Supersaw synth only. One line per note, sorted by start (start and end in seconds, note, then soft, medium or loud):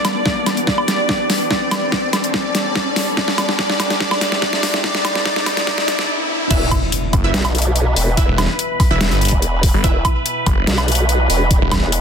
0.00 0.59 D5 medium
0.67 1.43 D5 loud
1.51 2.26 D5 loud
2.34 3.09 D5 loud
3.17 3.57 D5 loud
3.59 3.99 D5 loud
4.01 4.41 D5 loud
4.42 4.82 D5 loud
4.84 5.03 D5 loud
5.05 5.24 D5 loud
5.26 5.45 D5 loud
5.46 5.66 D5 loud
5.67 5.87 D5 loud
5.88 6.07 D5 loud